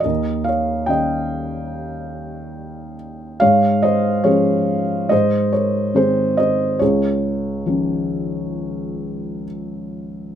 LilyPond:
<<
  \new Staff \with { instrumentName = "Felt piano" } { \time 4/4 \key des \major \tempo 4 = 70 <bes' ees''>8 <des'' f''>8 <ees'' g''>2~ <ees'' g''>8 r8 | <des'' f''>8 <c'' ees''>8 <aes' des''>4 <c'' ees''>8 <bes' des''>8 <aes' c''>8 <c'' ees''>8 | <aes' des''>2. r4 | }
  \new Staff \with { instrumentName = "Felt piano" } { \clef bass \time 4/4 \key des \major ees,4 <ees g des'>2. | aes,4 <f aes des'>4 aes,4 <ees aes c'>4 | des,4 <ees f des'>2. | }
>>